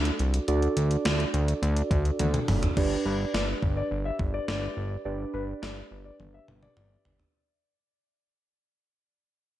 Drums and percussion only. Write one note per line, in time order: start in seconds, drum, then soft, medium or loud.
0.05 closed hi-hat medium
0.19 closed hi-hat medium
0.34 closed hi-hat medium
0.48 closed hi-hat medium
0.62 closed hi-hat medium
0.77 closed hi-hat medium
0.91 closed hi-hat medium
1.05 snare loud
1.05 closed hi-hat medium
1.20 closed hi-hat medium
1.34 closed hi-hat medium
1.48 closed hi-hat medium
1.63 closed hi-hat medium
1.77 closed hi-hat medium
1.91 kick medium
1.91 closed hi-hat medium
2.05 closed hi-hat medium
2.19 closed hi-hat medium
2.19 high tom medium
2.34 closed hi-hat medium
2.34 mid tom medium
2.48 mid tom medium
2.48 open hi-hat medium
2.63 closed hi-hat medium
2.63 floor tom medium
2.77 kick loud
2.77 crash medium
3.34 snare loud
3.62 kick medium
4.19 kick medium
4.48 snare loud
5.63 snare loud
6.20 high tom medium
6.48 mid tom medium
6.63 mid tom medium
6.77 mid tom medium
7.05 floor tom medium
7.20 floor tom medium